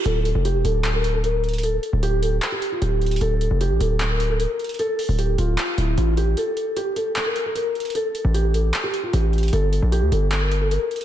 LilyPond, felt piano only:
\new Staff \with { instrumentName = "Felt piano" } { \time 4/4 \key d \minor \tempo 4 = 152 a'4 g'8 a'8. bes'8 a'16 bes'4 | a'4 g'8 a'8. g'8 f'16 g'4 | a'4 g'8 a'8. bes'8 a'16 bes'4 | a'4 g'8 f'4 e'8 f'8 g'8 |
a'4 g'8 a'8. bes'8 a'16 bes'4 | a'4 g'8 a'8. g'8 f'16 g'4 | a'4 g'8 a'8. bes'8 a'16 bes'4 | }